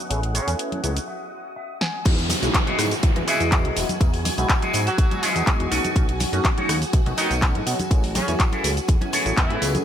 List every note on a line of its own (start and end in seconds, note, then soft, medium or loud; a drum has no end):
0.00 2.07 F#5 medium
0.00 2.07 D#6 medium
0.10 0.40 A1 medium
0.10 0.20 A3 medium
0.10 0.20 B3 medium
0.10 0.20 C#4 medium
0.10 0.20 E4 medium
0.10 0.21 G#4 medium
0.10 closed hi-hat medium
0.10 tambourine soft
0.10 shaker soft
0.23 closed hi-hat soft
0.23 tambourine soft
0.34 0.50 C#3 medium
0.34 0.50 C#4 medium
0.34 0.47 G#4 loud
0.34 0.48 A4 medium
0.34 0.48 C#5 loud
0.34 closed hi-hat medium
0.34 shaker medium
0.47 0.55 E2 medium
0.47 0.81 A3 medium
0.47 0.81 B3 medium
0.47 0.81 C#4 medium
0.47 0.81 E4 medium
0.47 0.81 G#5 medium
0.47 closed hi-hat medium
0.47 shaker soft
0.59 muted clean electric guitar stroke soft
0.59 closed hi-hat medium
0.59 shaker soft
0.72 closed hi-hat soft
0.72 tambourine soft
0.72 high conga medium
0.83 0.99 C#2 medium
0.83 0.90 A3 medium
0.83 0.90 B3 medium
0.83 0.90 C#4 medium
0.83 0.90 E4 medium
0.83 0.90 G#4 medium
0.83 0.95 C#5 medium
0.83 closed hi-hat medium
0.83 shaker medium
0.96 muted clean electric guitar stroke soft
0.96 closed hi-hat medium
0.96 shaker soft
1.08 1.53 E5 medium
1.56 1.79 E5 medium
1.81 2.04 G#5 medium
1.81 snare medium
2.05 2.35 E2 loud
2.05 2.15 G#3 medium
2.05 2.15 B3 medium
2.05 2.16 D#4 medium
2.05 2.16 E4 medium
2.05 9.85 F#4 medium
2.05 2.16 F#4 medium
2.05 9.85 G#5 medium
2.05 kick loud
2.05 closed hi-hat loud
2.05 crash loud
2.05 tambourine medium
2.05 downlifter medium
2.05 shaker soft
2.18 closed hi-hat soft
2.18 tambourine soft
2.29 muted clean electric guitar stroke loud
2.29 open hi-hat loud
2.29 tambourine loud
2.29 high conga medium
2.29 shaker medium
2.42 2.50 B1 loud
2.42 2.76 G#3 medium
2.42 2.76 B3 medium
2.42 2.76 D#4 medium
2.42 2.76 E4 medium
2.42 2.76 F#4 medium
2.42 muted clean electric guitar stroke soft
2.42 closed hi-hat soft
2.42 tambourine soft
2.42 shaker soft
2.54 kick loud
2.54 clap loud
2.54 closed hi-hat loud
2.54 tambourine medium
2.54 shaker soft
2.67 2.85 E4 medium
2.67 2.85 F#4 medium
2.67 2.85 G#4 medium
2.67 2.85 D#5 medium
2.67 closed hi-hat soft
2.67 high conga medium
2.78 2.94 G#2 medium
2.78 2.85 G#3 medium
2.78 2.85 B3 medium
2.78 2.85 D#4 medium
2.78 2.85 E4 medium
2.78 2.85 F#4 medium
2.78 cross-stick medium
2.78 open hi-hat loud
2.78 tambourine medium
2.78 shaker medium
2.91 closed hi-hat soft
2.91 tambourine soft
2.91 shaker soft
3.03 3.11 E2 loud
3.03 muted clean electric guitar stroke soft
3.03 kick loud
3.03 closed hi-hat loud
3.03 tambourine soft
3.03 shaker soft
3.15 3.23 E2 loud
3.15 3.49 G#3 medium
3.15 3.49 B3 medium
3.15 3.49 E4 medium
3.15 3.49 F#4 medium
3.15 muted clean electric guitar stroke medium
3.15 closed hi-hat soft
3.15 tambourine soft
3.15 high conga medium
3.27 3.43 E3 medium
3.27 3.76 E4 loud
3.27 3.43 E4 medium
3.27 3.76 F#4 loud
3.27 3.76 G#4 loud
3.27 3.76 D#5 loud
3.27 open hi-hat loud
3.27 tambourine medium
3.27 shaker medium
3.40 3.66 E2 medium
3.40 closed hi-hat soft
3.40 tambourine soft
3.40 shaker soft
3.51 3.73 G#3 loud
3.51 3.73 B3 medium
3.51 3.73 D#4 medium
3.51 3.74 E4 medium
3.51 3.74 F#4 loud
3.51 kick loud
3.51 clap loud
3.51 closed hi-hat medium
3.51 tambourine medium
3.51 high conga medium
3.51 shaker soft
3.65 3.72 B1 medium
3.65 closed hi-hat soft
3.76 3.84 E1 loud
3.76 3.86 G#3 medium
3.76 3.86 B3 medium
3.76 3.86 D#4 medium
3.76 3.86 E4 medium
3.76 3.87 F#4 loud
3.76 open hi-hat loud
3.76 tambourine medium
3.76 shaker medium
3.89 closed hi-hat soft
3.89 tambourine soft
3.89 high conga medium
3.89 shaker soft
4.00 4.30 E2 loud
4.00 4.10 G#3 medium
4.00 4.11 B3 medium
4.00 4.11 D#4 medium
4.00 4.11 E4 medium
4.00 4.11 F#4 medium
4.00 kick loud
4.00 closed hi-hat medium
4.00 tambourine medium
4.00 shaker soft
4.14 open hi-hat medium
4.14 tambourine soft
4.25 muted clean electric guitar stroke loud
4.25 open hi-hat loud
4.25 tambourine medium
4.25 high conga medium
4.25 shaker medium
4.38 4.45 B1 loud
4.38 4.71 G#3 medium
4.38 4.71 B3 medium
4.38 4.71 D#4 medium
4.38 4.71 E4 medium
4.38 4.71 F#4 medium
4.38 closed hi-hat soft
4.38 tambourine soft
4.38 shaker soft
4.49 kick loud
4.49 clap loud
4.49 closed hi-hat medium
4.49 tambourine medium
4.49 shaker soft
4.62 4.80 E4 medium
4.62 4.80 F#4 medium
4.62 4.80 G#4 medium
4.62 4.80 D#5 loud
4.62 closed hi-hat soft
4.62 tambourine soft
4.62 high conga medium
4.73 4.89 G#2 medium
4.73 4.80 G#3 medium
4.73 4.80 B3 medium
4.73 4.80 D#4 medium
4.73 4.80 E4 medium
4.73 4.80 F#4 medium
4.73 open hi-hat loud
4.73 tambourine loud
4.73 shaker medium
4.87 5.55 F#3 medium
4.87 5.55 F#4 loud
4.87 closed hi-hat soft
4.87 tambourine soft
4.87 shaker soft
4.98 5.06 B1 medium
4.98 kick loud
4.98 closed hi-hat loud
4.98 tambourine medium
4.98 shaker soft
5.11 5.44 G#3 medium
5.11 5.44 B3 medium
5.11 5.44 E4 medium
5.11 5.44 F#4 medium
5.11 5.44 D#5 medium
5.11 muted clean electric guitar stroke medium
5.11 closed hi-hat soft
5.11 tambourine soft
5.11 high conga loud
5.22 5.71 E4 loud
5.22 5.70 F#4 loud
5.22 5.71 G#4 loud
5.22 5.46 D#5 loud
5.22 5.45 G#5 medium
5.22 open hi-hat loud
5.22 tambourine loud
5.22 shaker medium
5.35 5.43 E2 loud
5.35 closed hi-hat soft
5.35 tambourine soft
5.35 shaker soft
5.47 5.68 G#3 loud
5.47 5.69 B3 medium
5.47 5.69 D#4 medium
5.47 5.69 E4 medium
5.47 5.69 F#4 loud
5.47 kick loud
5.47 clap loud
5.47 closed hi-hat medium
5.47 tambourine soft
5.47 high conga medium
5.47 shaker soft
5.60 5.67 E2 loud
5.60 closed hi-hat soft
5.71 5.79 B1 loud
5.71 5.81 A3 medium
5.71 5.81 B3 medium
5.71 5.81 C#4 medium
5.71 6.11 D#4 loud
5.71 5.82 D#4 medium
5.71 6.11 F#4 medium
5.71 5.82 F#4 loud
5.71 6.11 A4 medium
5.71 6.11 B4 loud
5.71 open hi-hat loud
5.71 tambourine medium
5.71 shaker medium
5.84 closed hi-hat soft
5.84 tambourine soft
5.84 high conga medium
5.84 shaker soft
5.96 6.25 B1 loud
5.96 6.06 A3 medium
5.96 6.06 B3 medium
5.96 6.06 C#4 medium
5.96 6.06 D#4 medium
5.96 6.06 F#4 medium
5.96 kick loud
5.96 closed hi-hat medium
5.96 tambourine soft
5.96 shaker soft
6.08 closed hi-hat soft
6.08 tambourine soft
6.20 muted clean electric guitar stroke loud
6.20 open hi-hat loud
6.20 tambourine medium
6.20 high conga loud
6.20 shaker medium
6.33 6.40 F#2 loud
6.33 6.66 A3 medium
6.33 6.66 B3 medium
6.33 6.66 C#4 medium
6.33 6.66 D#4 medium
6.33 6.66 F#4 medium
6.33 muted clean electric guitar stroke soft
6.33 closed hi-hat soft
6.33 tambourine soft
6.33 shaker soft
6.45 kick loud
6.45 clap loud
6.45 closed hi-hat medium
6.45 tambourine medium
6.45 shaker soft
6.57 6.75 D#4 loud
6.57 6.75 F#4 medium
6.57 6.76 A4 medium
6.57 6.76 C#5 medium
6.57 closed hi-hat soft
6.57 high conga medium
6.68 6.84 D#2 medium
6.68 6.75 A3 medium
6.68 6.75 B3 medium
6.68 6.75 C#4 medium
6.68 6.75 D#4 medium
6.68 6.75 F#4 medium
6.68 cross-stick medium
6.68 open hi-hat loud
6.68 tambourine medium
6.68 shaker medium
6.81 closed hi-hat soft
6.81 tambourine soft
6.81 shaker soft
6.93 7.01 B1 loud
6.93 muted clean electric guitar stroke soft
6.93 kick loud
6.93 closed hi-hat medium
6.93 tambourine soft
6.93 shaker soft
7.06 7.13 B1 loud
7.06 7.39 A3 medium
7.06 7.39 B3 medium
7.06 7.39 C#4 medium
7.06 7.39 D#4 medium
7.06 7.40 F#4 medium
7.06 muted clean electric guitar stroke medium
7.06 closed hi-hat soft
7.06 tambourine soft
7.06 high conga loud
7.17 7.33 D#3 medium
7.17 7.66 D#4 loud
7.17 7.33 D#4 medium
7.17 7.66 F#4 medium
7.17 7.66 A4 loud
7.17 7.67 B4 loud
7.17 open hi-hat loud
7.17 tambourine medium
7.17 shaker medium
7.31 7.56 B1 medium
7.31 closed hi-hat soft
7.31 tambourine soft
7.31 shaker soft
7.42 7.64 A3 loud
7.42 7.64 C#4 medium
7.42 7.64 D#4 medium
7.42 7.64 F#4 loud
7.42 kick loud
7.42 clap loud
7.42 closed hi-hat medium
7.42 tambourine medium
7.42 high conga medium
7.42 shaker soft
7.55 7.62 A2 medium
7.55 closed hi-hat soft
7.66 7.74 B2 loud
7.66 7.76 A3 medium
7.66 7.76 B3 medium
7.66 7.76 C#4 medium
7.66 7.77 D#4 medium
7.66 7.77 F#4 loud
7.66 open hi-hat loud
7.66 tambourine loud
7.66 shaker medium
7.79 closed hi-hat soft
7.79 tambourine soft
7.79 high conga loud
7.79 shaker soft
7.91 8.20 A1 loud
7.91 8.01 A3 medium
7.91 8.01 B3 medium
7.91 8.01 C#4 medium
7.91 8.01 E4 medium
7.91 8.01 G#4 medium
7.91 kick loud
7.91 closed hi-hat medium
7.91 tambourine soft
7.91 shaker soft
8.03 open hi-hat medium
8.03 tambourine soft
8.15 8.30 C#3 medium
8.15 8.30 C#4 medium
8.15 muted clean electric guitar stroke loud
8.15 open hi-hat loud
8.15 tambourine medium
8.15 high conga loud
8.15 shaker medium
8.28 8.35 E2 loud
8.28 8.61 A3 medium
8.28 8.61 B3 medium
8.28 8.61 C#4 medium
8.28 8.61 E4 medium
8.28 8.61 G#5 medium
8.28 closed hi-hat soft
8.28 tambourine soft
8.28 shaker soft
8.40 kick loud
8.40 clap loud
8.40 closed hi-hat medium
8.40 tambourine medium
8.40 shaker soft
8.52 8.70 E4 medium
8.52 8.70 G#4 medium
8.52 8.70 A4 medium
8.52 8.71 E5 medium
8.52 closed hi-hat soft
8.52 tambourine soft
8.52 high conga medium
8.64 8.80 C#2 medium
8.64 8.70 A3 medium
8.64 8.70 B3 medium
8.64 8.70 C#4 medium
8.64 8.70 E4 medium
8.64 8.70 G#4 medium
8.64 open hi-hat loud
8.64 tambourine medium
8.64 shaker medium
8.77 closed hi-hat soft
8.77 tambourine soft
8.77 shaker soft
8.88 8.96 E2 medium
8.88 kick loud
8.88 closed hi-hat medium
8.88 tambourine medium
8.88 shaker soft
9.01 9.34 A3 medium
9.01 9.34 B3 medium
9.01 9.34 C#4 medium
9.01 9.35 E4 medium
9.01 9.35 G#5 medium
9.01 muted clean electric guitar stroke medium
9.01 closed hi-hat soft
9.01 tambourine soft
9.01 high conga loud
9.13 9.62 E4 loud
9.13 9.62 G#4 loud
9.13 9.62 A4 loud
9.13 9.62 C#5 loud
9.13 open hi-hat loud
9.13 tambourine medium
9.13 shaker medium
9.26 9.33 A1 loud
9.26 closed hi-hat soft
9.26 tambourine soft
9.26 shaker soft
9.37 9.52 E2 loud
9.37 9.74 E3 medium
9.37 9.74 E4 loud
9.37 kick loud
9.37 clap loud
9.37 closed hi-hat medium
9.37 tambourine medium
9.37 high conga medium
9.37 shaker soft
9.50 9.57 A2 loud
9.50 9.59 A3 medium
9.50 9.59 B3 medium
9.50 9.59 C#4 medium
9.50 9.59 E4 medium
9.50 9.59 G#4 medium
9.50 closed hi-hat soft
9.61 9.77 C#2 loud
9.61 9.83 A3 medium
9.61 9.83 B3 medium
9.61 9.83 C#4 medium
9.61 9.83 E4 medium
9.61 9.84 G#4 loud
9.61 open hi-hat loud
9.61 tambourine medium
9.61 shaker medium
9.75 closed hi-hat soft
9.75 tambourine soft
9.75 high conga loud
9.75 shaker soft